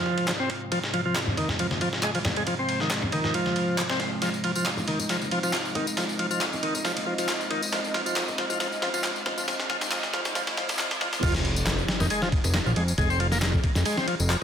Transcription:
Already playing: tonewheel organ F3, analog synth pad G#3 C4 F4 C5 F5
0.06 kick
0.18 kick, ride
0.28 tonewheel organ F3, snare, clap, ride
0.40 tonewheel organ C4
0.50 kick, ride
0.72 tonewheel organ F3, kick, ride
0.84 snare
0.94 tonewheel organ F3, ride
1.06 tonewheel organ F3
1.15 tonewheel organ F4, snare, clap, ride
1.27 low conga
1.37 tonewheel organ D#3, kick, ride, high conga
1.49 snare, low conga
1.59 tonewheel organ F3, ride
1.71 snare, high conga
1.81 tonewheel organ F3, kick, ride
1.93 snare
2.03 tonewheel organ G#3, clap, ride
2.15 tonewheel organ F3, kick, ride
2.25 snare, ride, low conga
2.36 tonewheel organ G#3, ride
2.47 tonewheel organ F3, kick, ride
2.59 tonewheel organ C4
2.69 ride
2.80 tonewheel organ D#3, snare
2.90 snare, clap, ride
3.02 kick, low conga
3.12 tonewheel organ D#3, kick, ride, high conga
3.24 snare, low conga
3.34 tonewheel organ F3, ride
3.46 snare, high conga
3.56 ride
3.78 tonewheel organ F3, clap, ride
3.90 tonewheel organ C4, snare
4.00 snare, ride
4.22 tonewheel organ F3, analog synth pad D#5, snare, ride, tambourine, riser
4.34 tambourine
4.44 tonewheel organ F3, ride
4.56 tonewheel organ F3, tambourine
4.66 tonewheel organ F4, snare, clap, ride, tambourine
4.77 tambourine, low conga
4.88 tonewheel organ D#3, ride, high conga
4.99 tambourine, low conga
5.09 tonewheel organ F3, snare, ride, tambourine
5.21 tambourine, high conga
5.31 tonewheel organ F3, ride
5.43 tonewheel organ F3, ride, tambourine
5.53 tonewheel organ F4, snare, clap, ride, tambourine
5.65 tambourine
5.75 tonewheel organ D#3, ride, low conga
5.87 tambourine
5.97 tonewheel organ F3, snare, ride, tambourine
6.09 tambourine
6.19 tonewheel organ F3, ride
6.31 tonewheel organ F3, tambourine
6.41 tonewheel organ F4, snare, clap, ride, tambourine
6.53 tambourine, low conga
6.63 tonewheel organ D#3, ride, high conga
6.75 tambourine, low conga
6.84 tonewheel organ F3, snare, ride, tambourine
6.97 ride, tambourine, high conga
7.06 tonewheel organ F3
7.18 tonewheel organ F3, ride, tambourine
7.28 tonewheel organ F4, snare, clap, ride, tambourine
7.41 tambourine
7.50 tonewheel organ D#3, ride
7.62 tambourine
7.72 tonewheel organ F3, snare, ride, tambourine
7.84 tambourine
7.94 tonewheel organ F3, snare, ride
8.06 tonewheel organ F3, tambourine
8.16 tonewheel organ F3, snare, clap, ride, tambourine
8.28 tambourine, low conga
8.38 tonewheel organ F3, snare, ride, high conga
8.50 tonewheel organ F3, tambourine, low conga
8.60 tonewheel organ F3, snare, ride, tambourine
8.71 tambourine, high conga
8.82 tonewheel organ F3, snare, ride
8.94 tonewheel organ F3, ride, tambourine
9.04 tonewheel organ F3, snare, clap, ride, tambourine
9.16 tambourine
9.26 tonewheel organ F3, snare, ride, low conga
9.37 tonewheel organ F3, tambourine
9.48 tonewheel organ F3, snare, ride, tambourine
9.60 snare, tambourine
9.70 tonewheel organ F3, snare, ride, high conga
9.81 snare, tambourine
9.91 tonewheel organ F3, snare, clap, ride, tambourine
10.03 snare, tambourine, low conga
10.13 tonewheel organ F3, snare, ride, high conga
10.25 snare, tambourine, low conga
10.35 tonewheel organ F3, snare, ride, tambourine
10.47 snare, ride, tambourine, high conga
10.57 tonewheel organ F3, snare, ride
10.69 snare, ride, tambourine
10.79 tonewheel organ F3, snare, clap, tambourine
10.91 snare, ride, tambourine
11.01 tonewheel organ F3, snare, ride
11.13 snare, tambourine
11.23 analog synth bass F1, tonewheel organ F3, kick, crash, ride, tambourine, sub drop
11.34 snare, tambourine
11.45 ride
11.56 tambourine
11.67 snare, clap, ride, tambourine
11.78 tambourine
11.88 snare, ride
12.00 analog synth bass F1, tonewheel organ D#3, snare, tambourine
12.10 tonewheel organ G#3, ride, tambourine
12.22 tonewheel organ F3, snare, tambourine
12.32 kick, ride
12.44 analog synth bass F1, ride, tambourine
12.54 tonewheel organ A#3, snare, clap, ride, tambourine
12.66 analog synth bass A#1, tonewheel organ F3, tambourine
12.76 analog synth bass F2, tonewheel organ G#3, ride
12.88 tambourine
12.98 analog synth bass F1, tonewheel organ G#3, kick, ride, tambourine
13.10 tonewheel organ C4, tambourine
13.20 tonewheel organ F3, ride
13.32 tonewheel organ A#3, snare, tambourine
13.42 snare, clap, ride
13.54 kick, tambourine
13.64 kick, ride
13.75 analog synth bass F1, snare, tambourine
13.85 tonewheel organ G#3, ride, tambourine
13.97 tonewheel organ C4, snare, tambourine
14.08 tonewheel organ F3, ride
14.20 analog synth bass F1, tambourine
14.30 tonewheel organ F3, clap, tambourine

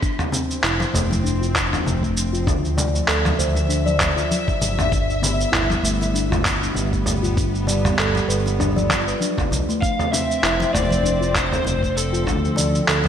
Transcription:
0.02 string section F3, steel tongue drum D4, kick, shaker
0.19 mid tom, shaker
0.32 steel tongue drum C4, low conga, shaker
0.37 string section C4
0.51 shaker
0.63 analog synth bass F1, steel tongue drum E4, clap, shaker
0.80 muted conga, shaker
0.93 analog synth bass F1, steel tongue drum A3, mid tom, shaker
1.11 muted conga, high conga, shaker
1.24 steel tongue drum D4, shaker
1.41 steel tongue drum F4, shaker
1.55 kick, clap, shaker
1.72 steel tongue drum D4, mid tom, shaker
1.86 analog synth bass F1, low conga, shaker
2.02 steel tongue drum A3, kick, shaker
2.17 shaker
2.33 steel tongue drum F4, shaker
2.46 analog synth bass D2, steel tongue drum D4, kick, mid tom, shaker
2.65 shaker
2.77 steel tongue drum D5, low conga, shaker
2.95 shaker
3.08 analog synth bass D2, steel tongue drum A4, string section E5, clap, shaker
3.25 mid tom, muted conga, shaker
3.39 analog synth bass D2, steel tongue drum C5, shaker
3.55 muted conga, high conga, shaker
3.69 steel tongue drum D4, shaker
3.86 steel tongue drum D5, high conga, shaker
4.00 kick, clap, mid tom, high conga, shaker
4.16 steel tongue drum F4, shaker
4.31 high conga, shaker
4.47 steel tongue drum D5, kick, low conga, shaker
4.61 analog synth bass G1, high conga, low conga, shaker
4.78 steel tongue drum D4, mid tom, muted conga, shaker
4.91 string section G3, steel tongue drum D4, kick, shaker
5.10 shaker
5.22 steel tongue drum B3, low conga, shaker
5.38 string section B3, shaker
5.52 analog synth bass G1, steel tongue drum E4, clap, mid tom, shaker
5.70 muted conga, shaker
5.83 analog synth bass G1, steel tongue drum A3, shaker
6.01 muted conga, high conga, shaker
6.14 steel tongue drum D4, shaker
6.31 steel tongue drum F4, mid tom, shaker
6.45 kick, clap, shaker
6.62 steel tongue drum D4, shaker
6.75 analog synth bass G1, low conga, shaker
6.92 steel tongue drum A3, kick, shaker
7.06 mid tom, shaker
7.23 steel tongue drum F4, shaker
7.37 steel tongue drum D4, kick, shaker
7.55 shaker
7.67 steel tongue drum D5, low conga, shaker
7.85 mid tom, shaker
7.98 analog synth bass G1, steel tongue drum A4, clap, shaker
8.15 muted conga, shaker
8.28 analog synth bass G1, steel tongue drum B4, shaker
8.45 muted conga, high conga, shaker
8.59 steel tongue drum D4, mid tom, shaker
8.76 steel tongue drum D5, high conga, shaker
8.90 steel tongue drum F4, kick, clap, high conga, shaker
9.07 steel tongue drum B4, shaker
9.21 steel tongue drum D4, high conga, shaker
9.37 steel tongue drum D4, kick, mid tom, low conga, shaker
9.51 analog synth bass B1, high conga, low conga, shaker
9.69 steel tongue drum A3, muted conga, shaker
9.81 string section F3, steel tongue drum D4, electric slide guitar F5, kick, shaker
9.99 string section C4, mid tom, shaker
10.12 steel tongue drum C4, electric slide guitar E5, low conga, shaker
10.31 shaker
10.43 analog synth bass F1, steel tongue drum E4, clap, shaker
10.60 muted conga, shaker
10.73 analog synth bass F1, steel tongue drum A3, electric slide guitar D5, mid tom, shaker
10.90 muted conga, high conga, shaker
11.04 steel tongue drum D4, shaker
11.21 steel tongue drum F4, shaker
11.35 electric slide guitar C5, kick, clap, shaker
11.51 steel tongue drum D4, mid tom, shaker
11.65 analog synth bass F1, low conga, shaker
11.82 steel tongue drum A3, kick, shaker
11.97 electric slide guitar A4, shaker
12.13 steel tongue drum F4, shaker
12.27 analog synth bass D2, steel tongue drum D4, kick, mid tom, shaker
12.45 shaker
12.56 steel tongue drum D5, low conga, shaker
12.75 shaker
12.88 analog synth bass D2, steel tongue drum A4, clap, shaker
13.04 muted conga

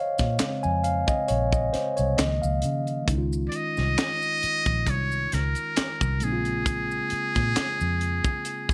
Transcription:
Already playing: tine electric piano C5 C#5 D#5 F5
0.18 fingered electric bass A#2, kick, snare, closed hi-hat, maracas
0.38 tine electric piano C#3 G#3 C4, finger snap, muted fingered electric bass stroke, snare, clap, closed hi-hat, maracas
0.63 fingered electric bass F2, tine electric piano G#5, maracas
0.84 tine electric piano F5, closed hi-hat, maracas
1.07 tine electric piano D#5, kick, maracas
1.28 fingered electric bass A#1, tine electric piano C#5, closed hi-hat, maracas
1.52 tine electric piano D#5, kick, maracas
1.73 tine electric piano C5, muted fingered electric bass stroke, snare, closed hi-hat
1.96 fingered electric bass C2, tine electric piano C#5, closed hi-hat, maracas
2.16 fingered electric bass C#2, tine electric piano D#3 F3 A#3 D#5, finger snap, snare, clap, closed hi-hat, maracas
2.42 fingered electric bass C#2, tine electric piano F5, maracas
2.62 fingered electric bass C#3, closed hi-hat, maracas
2.87 closed hi-hat, maracas
3.04 tine electric piano D#3 G#3 D#4, kick
3.08 fingered electric bass C#2, tine electric piano C#4 E4, closed hi-hat, maracas
3.18 tine electric piano F4
3.33 maracas
3.48 muted trumpet D5, closed hi-hat
3.56 muted trumpet D#5
3.77 fingered electric bass C2, snare, maracas
3.98 finger snap, snare, clap, closed hi-hat, maracas
4.22 maracas
4.43 muted fingered electric bass stroke, closed hi-hat
4.66 fingered electric bass A#1, kick, closed hi-hat, maracas
4.87 fingered electric bass C2, muted trumpet C#5, kick, closed hi-hat, maracas
5.12 maracas
5.32 fingered electric bass C#2, muted trumpet A#4, snare, closed hi-hat
5.55 closed hi-hat, maracas
5.76 finger snap, muted fingered electric bass stroke, snare, clap, closed hi-hat, maracas
6.01 fingered electric bass C2, kick, maracas
6.18 tine electric piano C#3 G#3 A#3, closed hi-hat
6.22 fingered electric bass A#1, tine electric piano C4 D#4, muted trumpet G#4, maracas
6.32 tine electric piano F4
6.45 closed hi-hat, maracas
6.66 kick, closed hi-hat, maracas
6.91 maracas
7.10 muted fingered electric bass stroke, closed hi-hat
7.35 fingered electric bass A#2, kick, snare, closed hi-hat, maracas
7.56 finger snap, muted fingered electric bass stroke, snare, clap, closed hi-hat, maracas
7.81 fingered electric bass F2, maracas
8.01 closed hi-hat
8.24 kick, maracas
8.45 closed hi-hat, maracas
8.69 kick, maracas

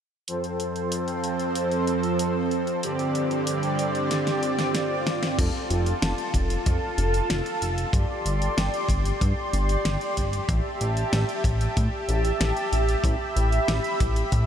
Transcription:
0.28 supersaw synth F2 F3 C4 A4 C5, closed hi-hat
0.44 closed hi-hat
0.60 closed hi-hat
0.76 closed hi-hat
0.92 closed hi-hat
1.08 closed hi-hat
1.24 closed hi-hat
1.40 closed hi-hat
1.55 closed hi-hat
1.72 closed hi-hat
1.87 closed hi-hat
2.03 closed hi-hat
2.19 closed hi-hat
2.51 closed hi-hat
2.67 closed hi-hat
2.83 supersaw synth G2 D3 C4 G4 D5, closed hi-hat
2.99 closed hi-hat
3.15 closed hi-hat
3.31 closed hi-hat
3.47 closed hi-hat
3.63 closed hi-hat
3.79 closed hi-hat
3.95 closed hi-hat
4.11 snare, closed hi-hat, swell
4.27 snare, closed hi-hat
4.43 closed hi-hat
4.59 snare, closed hi-hat
4.75 snare, closed hi-hat
5.07 snare, closed hi-hat
5.23 snare, closed hi-hat
5.39 analog synth bass F1, supersaw synth F4 A4 A5, kick, closed hi-hat, crash
5.70 analog synth bass F1, closed hi-hat
5.86 closed hi-hat
6.02 analog synth bass F1, snare, closed hi-hat
6.18 closed hi-hat
6.34 analog synth bass F1, kick, closed hi-hat
6.50 closed hi-hat
6.66 analog synth bass F2, kick, closed hi-hat
6.98 analog synth bass F1, closed hi-hat
7.14 closed hi-hat
7.30 analog synth bass F1, snare, closed hi-hat
7.46 closed hi-hat
7.62 analog synth bass F1, closed hi-hat
7.78 closed hi-hat
7.93 analog synth bass G1, supersaw synth G4 D5 C6, kick, closed hi-hat
8.26 analog synth bass G1, closed hi-hat
8.42 closed hi-hat
8.57 analog synth bass G1, snare, closed hi-hat
8.74 closed hi-hat
8.89 analog synth bass G1, kick, closed hi-hat
9.05 closed hi-hat
9.21 analog synth bass G2, kick, closed hi-hat
9.53 analog synth bass G1, closed hi-hat
9.69 closed hi-hat
9.85 analog synth bass G1, snare, closed hi-hat
10.01 closed hi-hat
10.17 analog synth bass G1, kick, closed hi-hat
10.33 closed hi-hat
10.49 analog synth bass A1, supersaw synth E5 A5, kick, closed hi-hat
10.81 analog synth bass A1, closed hi-hat
10.97 closed hi-hat
11.13 analog synth bass A1, snare, closed hi-hat
11.29 closed hi-hat
11.44 analog synth bass A1, kick, closed hi-hat
11.61 closed hi-hat
11.77 analog synth bass A2, kick, closed hi-hat
12.09 analog synth bass A1, closed hi-hat
12.25 closed hi-hat
12.41 analog synth bass A1, snare, closed hi-hat
12.57 closed hi-hat
12.72 analog synth bass A1, closed hi-hat
12.89 closed hi-hat
13.04 analog synth bass A1, supersaw synth B5, kick, closed hi-hat
13.36 analog synth bass A1, closed hi-hat
13.52 closed hi-hat
13.68 analog synth bass A1, snare, closed hi-hat
13.84 closed hi-hat
14.00 analog synth bass A1, kick, closed hi-hat
14.16 closed hi-hat
14.32 analog synth bass A2, kick, closed hi-hat

